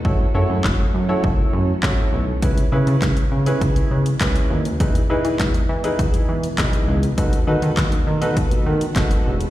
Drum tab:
HH |----------------|xx-xxx-xxx-xxx-x|xx-xxx-xxx-xxx-x|xx-xxx-xxx-xxx-x|
CP |----x-------x---|----x-------x---|----x-------x---|----x-------x---|
SD |----o-------o---|----o-------o---|----o-------o---|----o-------o---|
BD |o---o---o---o---|o---o---o---o---|o---o---o---o---|o---o---o---o---|